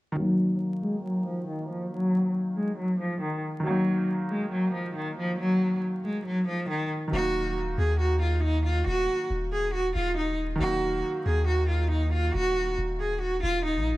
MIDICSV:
0, 0, Header, 1, 4, 480
1, 0, Start_track
1, 0, Key_signature, -6, "minor"
1, 0, Tempo, 434783
1, 189, Time_signature, 4, 2, 24, 8
1, 15424, End_track
2, 0, Start_track
2, 0, Title_t, "Cello"
2, 0, Program_c, 0, 42
2, 187, Note_on_c, 0, 54, 105
2, 639, Note_off_c, 0, 54, 0
2, 909, Note_on_c, 0, 56, 81
2, 1123, Note_off_c, 0, 56, 0
2, 1147, Note_on_c, 0, 54, 79
2, 1362, Note_off_c, 0, 54, 0
2, 1389, Note_on_c, 0, 53, 76
2, 1603, Note_off_c, 0, 53, 0
2, 1630, Note_on_c, 0, 51, 78
2, 1843, Note_off_c, 0, 51, 0
2, 1869, Note_on_c, 0, 53, 78
2, 2083, Note_off_c, 0, 53, 0
2, 2110, Note_on_c, 0, 54, 105
2, 2561, Note_off_c, 0, 54, 0
2, 2828, Note_on_c, 0, 56, 76
2, 3043, Note_off_c, 0, 56, 0
2, 3070, Note_on_c, 0, 54, 83
2, 3283, Note_off_c, 0, 54, 0
2, 3308, Note_on_c, 0, 53, 91
2, 3523, Note_off_c, 0, 53, 0
2, 3548, Note_on_c, 0, 51, 83
2, 3763, Note_off_c, 0, 51, 0
2, 4029, Note_on_c, 0, 54, 114
2, 4480, Note_off_c, 0, 54, 0
2, 4748, Note_on_c, 0, 56, 80
2, 4963, Note_off_c, 0, 56, 0
2, 4989, Note_on_c, 0, 54, 84
2, 5203, Note_off_c, 0, 54, 0
2, 5229, Note_on_c, 0, 53, 74
2, 5443, Note_off_c, 0, 53, 0
2, 5469, Note_on_c, 0, 51, 78
2, 5683, Note_off_c, 0, 51, 0
2, 5710, Note_on_c, 0, 53, 87
2, 5924, Note_off_c, 0, 53, 0
2, 5949, Note_on_c, 0, 54, 108
2, 6400, Note_off_c, 0, 54, 0
2, 6668, Note_on_c, 0, 56, 69
2, 6883, Note_off_c, 0, 56, 0
2, 6909, Note_on_c, 0, 54, 85
2, 7123, Note_off_c, 0, 54, 0
2, 7148, Note_on_c, 0, 53, 89
2, 7362, Note_off_c, 0, 53, 0
2, 7390, Note_on_c, 0, 51, 88
2, 7603, Note_off_c, 0, 51, 0
2, 7869, Note_on_c, 0, 66, 116
2, 8320, Note_off_c, 0, 66, 0
2, 8590, Note_on_c, 0, 68, 82
2, 8804, Note_off_c, 0, 68, 0
2, 8830, Note_on_c, 0, 66, 85
2, 9043, Note_off_c, 0, 66, 0
2, 9072, Note_on_c, 0, 65, 75
2, 9285, Note_off_c, 0, 65, 0
2, 9311, Note_on_c, 0, 63, 84
2, 9524, Note_off_c, 0, 63, 0
2, 9552, Note_on_c, 0, 65, 87
2, 9765, Note_off_c, 0, 65, 0
2, 9792, Note_on_c, 0, 66, 109
2, 10242, Note_off_c, 0, 66, 0
2, 10510, Note_on_c, 0, 68, 81
2, 10723, Note_off_c, 0, 68, 0
2, 10751, Note_on_c, 0, 66, 89
2, 10964, Note_off_c, 0, 66, 0
2, 10991, Note_on_c, 0, 65, 94
2, 11204, Note_off_c, 0, 65, 0
2, 11230, Note_on_c, 0, 63, 87
2, 11444, Note_off_c, 0, 63, 0
2, 11709, Note_on_c, 0, 66, 120
2, 12161, Note_off_c, 0, 66, 0
2, 12430, Note_on_c, 0, 68, 82
2, 12643, Note_off_c, 0, 68, 0
2, 12670, Note_on_c, 0, 66, 91
2, 12883, Note_off_c, 0, 66, 0
2, 12909, Note_on_c, 0, 65, 80
2, 13123, Note_off_c, 0, 65, 0
2, 13150, Note_on_c, 0, 63, 81
2, 13363, Note_off_c, 0, 63, 0
2, 13389, Note_on_c, 0, 65, 88
2, 13603, Note_off_c, 0, 65, 0
2, 13629, Note_on_c, 0, 66, 117
2, 14080, Note_off_c, 0, 66, 0
2, 14349, Note_on_c, 0, 68, 73
2, 14563, Note_off_c, 0, 68, 0
2, 14590, Note_on_c, 0, 66, 88
2, 14803, Note_off_c, 0, 66, 0
2, 14828, Note_on_c, 0, 65, 96
2, 15042, Note_off_c, 0, 65, 0
2, 15070, Note_on_c, 0, 63, 90
2, 15284, Note_off_c, 0, 63, 0
2, 15424, End_track
3, 0, Start_track
3, 0, Title_t, "Felt piano"
3, 0, Program_c, 1, 0
3, 133, Note_on_c, 1, 51, 67
3, 172, Note_on_c, 1, 54, 59
3, 211, Note_on_c, 1, 58, 63
3, 250, Note_on_c, 1, 63, 70
3, 375, Control_c, 1, 64, 127
3, 3956, Note_off_c, 1, 51, 0
3, 3973, Note_on_c, 1, 51, 70
3, 3976, Note_off_c, 1, 54, 0
3, 3996, Note_off_c, 1, 58, 0
3, 4011, Note_on_c, 1, 54, 67
3, 4015, Note_off_c, 1, 63, 0
3, 4050, Note_on_c, 1, 58, 59
3, 4090, Note_on_c, 1, 63, 67
3, 7796, Note_off_c, 1, 51, 0
3, 7812, Note_on_c, 1, 51, 68
3, 7816, Note_off_c, 1, 54, 0
3, 7836, Note_off_c, 1, 58, 0
3, 7851, Note_on_c, 1, 54, 63
3, 7855, Note_off_c, 1, 63, 0
3, 7883, Control_c, 1, 64, 0
3, 7891, Note_on_c, 1, 58, 65
3, 7929, Note_on_c, 1, 63, 75
3, 8051, Control_c, 1, 64, 127
3, 11636, Note_off_c, 1, 51, 0
3, 11652, Note_on_c, 1, 51, 75
3, 11656, Note_off_c, 1, 54, 0
3, 11676, Note_off_c, 1, 58, 0
3, 11691, Note_on_c, 1, 54, 70
3, 11695, Note_off_c, 1, 63, 0
3, 11730, Note_on_c, 1, 58, 64
3, 15424, Note_off_c, 1, 51, 0
3, 15424, Note_off_c, 1, 54, 0
3, 15424, Note_off_c, 1, 58, 0
3, 15424, End_track
4, 0, Start_track
4, 0, Title_t, "808-style bass"
4, 0, Program_c, 2, 38
4, 7869, Note_on_c, 2, 27, 113
4, 8560, Note_off_c, 2, 27, 0
4, 8589, Note_on_c, 2, 39, 105
4, 9745, Note_off_c, 2, 39, 0
4, 9789, Note_on_c, 2, 27, 114
4, 10020, Note_off_c, 2, 27, 0
4, 10270, Note_on_c, 2, 27, 106
4, 10961, Note_off_c, 2, 27, 0
4, 10990, Note_on_c, 2, 27, 102
4, 11681, Note_off_c, 2, 27, 0
4, 11709, Note_on_c, 2, 27, 112
4, 12170, Note_off_c, 2, 27, 0
4, 12429, Note_on_c, 2, 39, 104
4, 13585, Note_off_c, 2, 39, 0
4, 13630, Note_on_c, 2, 27, 112
4, 14090, Note_off_c, 2, 27, 0
4, 14109, Note_on_c, 2, 27, 106
4, 14801, Note_off_c, 2, 27, 0
4, 14829, Note_on_c, 2, 27, 104
4, 15189, Note_on_c, 2, 34, 99
4, 15205, Note_off_c, 2, 27, 0
4, 15369, Note_on_c, 2, 27, 99
4, 15386, Note_off_c, 2, 34, 0
4, 15424, Note_off_c, 2, 27, 0
4, 15424, End_track
0, 0, End_of_file